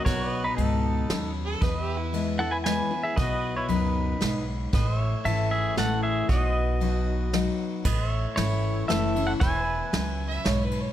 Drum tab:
CC |------|------|------|------|
RD |x-x-x-|x-x-x-|x-x-x-|x-x-x-|
SD |----o-|----o-|----o-|----o-|
BD |o-----|o-----|o-----|o-----|

CC |------|x-----|------|
RD |x-x-x-|--x-xx|x-x-xx|
SD |----o-|--o-o-|--o-o-|
BD |o-----|o-----|o-----|